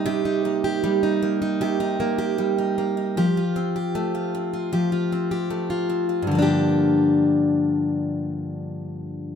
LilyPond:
\new Staff \with { instrumentName = "Steel-string acoustic guitar" } { \time 4/4 \key g \minor \tempo 4 = 77 <c ees' g'>16 ees'16 bes16 g'16 g16 ees'16 bes16 ees'16 <c g'>16 ees'16 bes16 g'16 g16 ees'16 bes16 ees'16 | <f g'>16 f'16 c'16 g'16 a16 f'16 c'16 f'16 <f g'>16 f'16 c'16 g'16 a16 f'16 c'16 f'16 | <g, d f bes d' g'>1 | }